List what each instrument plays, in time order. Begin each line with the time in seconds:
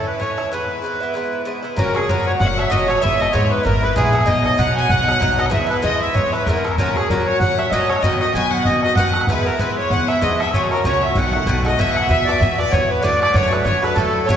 Already playing: bouzouki A2 E3 C#4 E4
0.06 fiddle B4, accordion B4
0.19 bouzouki A2 E3 C#4 E4, fiddle C#5, accordion C#5, bodhran
0.37 bouzouki E3 C#4 E4, bodhran
0.51 bouzouki G#2 E3 B3 E4, fiddle B4, accordion B4
0.82 bouzouki G#2 E3 B3 E4
1.00 bouzouki E3 B3 E4
1.14 bouzouki G#2 E3 B3 E4
1.45 bouzouki G#2 E3 B3 E4
1.63 bouzouki E3 B3 E4
1.76 upright bass F#1, bouzouki A#2 F#3 C#4 F#4, accordion A#4, fiddle A#4, bodhran
1.94 bouzouki F#3 C#4 F#4, accordion G#4, fiddle G#4, bodhran
2.08 upright bass F#2, bouzouki A#2 F#3 C#4 F#4, fiddle A#4, accordion A#4, bodhran
2.26 accordion C#5, fiddle C#5
2.39 upright bass F#1, bouzouki A#2 F#3 C#4, accordion F#5, fiddle F#5, bodhran
2.44 bouzouki F#4
2.53 accordion F#5
2.57 bouzouki C#4 F#4, accordion E5, fiddle E5, bodhran
2.61 bouzouki F#3
2.70 upright bass F#1, bouzouki A#2 F#3 C#4 F#4, accordion D#5, fiddle D#5, bodhran
2.87 bouzouki F#3 C#4 F#4, accordion C#5, fiddle C#5, bodhran
2.98 bouzouki G#2, accordion E5, fiddle E5, bodhran
3.02 upright bass G#1, bouzouki E3 B3 E4, bodhran
3.19 bouzouki E3 B3 E4, accordion D#5, fiddle D#5, bodhran
3.32 bouzouki G#2 E3 B3 E4, upright bass G#2, accordion C#5, fiddle C#5, bodhran
3.50 accordion B4, fiddle B4
3.64 upright bass G#1, bouzouki G#2 E3 B3 E4, accordion A#4, fiddle A#4, bodhran
3.81 bouzouki E3 B3 E4, accordion B4, fiddle B4
3.96 upright bass A#1, bouzouki G#2 E3 B3 E4, accordion G#4, fiddle G#4, bodhran
4.13 bouzouki E3 B3 E4, bodhran
4.21 bodhran
4.26 upright bass B1, bouzouki B2 F#3 B3 D#4, accordion D#5, fiddle D#5, bodhran
4.44 bouzouki F#3 B3 D#4, accordion D#5, bodhran
4.58 bouzouki B2 F#3 B3 D#4, upright bass B2, accordion F#5, fiddle F#5, bodhran
4.76 accordion G#5, fiddle G#5
4.89 upright bass B1, bouzouki B2 F#3 B3 D#4, accordion F#5, fiddle F#5, bodhran
5.04 bouzouki D#4, fiddle F#5 G#5
5.08 bouzouki F#3 B3, bodhran
5.18 upright bass B1, bouzouki B2 F#3 B3, fiddle E5 F#5, bodhran
5.23 bouzouki D#4
5.37 bouzouki F#3 B3 D#4, accordion D#5, fiddle D#5, bodhran
5.46 bouzouki G#2, bodhran
5.51 upright bass E2, bouzouki E3 B3 E4, fiddle E5, accordion E5, bodhran
5.67 bouzouki E3 B3 E4, accordion B4, fiddle B4
5.71 bodhran
5.82 bouzouki G#2 E3 B3 E4, upright bass E3, fiddle D#5, accordion D#5, bodhran
6.02 fiddle E5, accordion E5
6.14 upright bass E2, bouzouki G#2 E3 B3 E4, accordion C#5, fiddle C#5, bodhran
6.32 bouzouki E3 B3 E4, accordion B4, fiddle B4, bodhran
6.46 upright bass E2, bouzouki G#2 E3 B3 E4, fiddle A#4, accordion A#4, bodhran
6.64 bouzouki E3 B3 E4, bodhran
6.71 bodhran
6.77 upright bass F#2, bouzouki A#2 F#3 C#4, fiddle A#4, accordion A#4, bodhran
6.81 bouzouki F#4
6.95 bouzouki C#4 F#4, accordion G#4, fiddle G#4, bodhran
6.99 bouzouki F#3
7.09 bouzouki A#2 F#3 C#4, upright bass F#3, accordion A#4, fiddle A#4, bodhran
7.13 bouzouki F#4
7.26 accordion C#5, fiddle C#5
7.39 upright bass F#2, bouzouki A#2 F#3 C#4, accordion F#5, fiddle F#5, bodhran
7.44 bouzouki F#4
7.58 bouzouki F#3 C#4 F#4, accordion E5, fiddle E5, bodhran
7.70 upright bass F#2, bouzouki A#2 F#3 C#4, accordion D#5, fiddle D#5, bodhran
7.75 bouzouki F#4
7.88 bouzouki C#4 F#4, accordion C#5, fiddle C#5, bodhran
7.92 bouzouki F#3, bodhran
8.02 upright bass F#2, bouzouki B2 D#3 B3 F#4, accordion D#5, fiddle D#5, bodhran
8.20 bouzouki B3 F#4, fiddle D#5, accordion D#5, bodhran
8.24 bouzouki D#3
8.34 bouzouki B2 D#3 B3 F#4, upright bass F#3, accordion G#5, fiddle G#5, bodhran
8.51 fiddle F#5, accordion F#5
8.65 upright bass F#2, bouzouki B2 D#3 B3, accordion D#5, fiddle D#5, bodhran
8.69 bouzouki F#4
8.83 bouzouki B3 F#4, accordion D#5, fiddle D#5, bodhran
8.88 bouzouki D#3
8.95 upright bass F#2, bouzouki B2 D#3 B3, accordion F#5, fiddle F#5, bodhran
9.00 bouzouki F#4
9.13 bouzouki B3 F#4, bodhran
9.19 bouzouki D#3, bodhran
9.27 upright bass E2, bouzouki G#2 E3 B3, accordion B4, fiddle B4, bodhran
9.32 bouzouki E4
9.46 bouzouki E3 B3 E4, accordion A#4, fiddle A#4
9.59 bouzouki G#2 E3 B3 E4, upright bass E3, fiddle B4, accordion B4, bodhran
9.78 accordion C#5, fiddle C#5
9.90 upright bass E2, bouzouki G#2 E3 B3 E4, fiddle F#5, accordion F#5, bodhran
10.08 bouzouki E3 B3 E4, fiddle E5, accordion E5, bodhran
10.21 upright bass F2, bouzouki G#2 E3 B3 E4, fiddle D#5, accordion D#5, bodhran
10.40 bouzouki E3 B3 E4, fiddle E5, accordion E5, bodhran
10.47 bodhran
10.53 upright bass F#2, bouzouki A#2 F#3 C#4 F#4, accordion C#5, fiddle C#5, bodhran
10.71 bouzouki C#4 F#4, accordion A#4, fiddle A#4, bodhran
10.76 bouzouki F#3
10.84 upright bass C#2, bouzouki A#2 F#3 C#4 F#4, fiddle C#5, accordion C#5, bodhran
11.02 fiddle E5, accordion E5, bodhran
11.15 upright bass B1, bouzouki B2 D#3 A3 F#4, fiddle F#5, accordion F#5, bodhran
11.33 bouzouki D#3 A3 F#4, bodhran
11.46 upright bass B1, bouzouki B2 D#3 A3 F#4, bodhran
11.65 bouzouki D#3 A3 F#4, accordion D#5, fiddle D#5, bodhran
11.78 upright bass E2, bouzouki B2 E3 B3 F#4, accordion E5, fiddle E5, bodhran
11.91 accordion E5 F#5, fiddle F#5
11.97 bodhran
12.02 fiddle E5
12.09 upright bass E2, bouzouki B2 E3 B3 F#4, accordion E5, fiddle E5, bodhran
12.20 bodhran
12.25 bouzouki B3 F#4, accordion D5
12.29 bouzouki E3, fiddle D5, bodhran
12.40 upright bass E2, bouzouki B2 E3 B3, accordion E5, fiddle E5, bodhran
12.44 bouzouki F#4
12.58 bouzouki E3 B3 F#4, accordion D5, fiddle D5, bodhran
12.71 upright bass E2, bouzouki B2 E3 B3 F#4, accordion C#5, fiddle C#5, bodhran
12.90 accordion B4, fiddle B4
13.02 upright bass F#2, bouzouki A2 D3 A3 F#4, accordion D5, fiddle D5, bodhran
13.21 accordion D5, fiddle D5, bodhran
13.33 upright bass F#2, bouzouki A2 D3 A3, accordion C#5, fiddle C#5, bodhran
13.38 bouzouki F#4
13.44 bodhran
13.51 bouzouki D3 A3 F#4, accordion B4, fiddle B4, bodhran
13.64 upright bass F#2, bouzouki A2 D3 A3 F#4, accordion C#5, fiddle C#5, bodhran
13.82 bouzouki D3 A3 F#4, accordion B4, fiddle B4, bodhran
13.93 bouzouki A2, upright bass F#3, accordion A4, bodhran
13.98 bouzouki D3 A3 F#4, fiddle A4
14.26 upright bass F#2, bouzouki C#3 F#3, accordion C#5, fiddle C#5, bodhran
14.30 bouzouki A3 F#4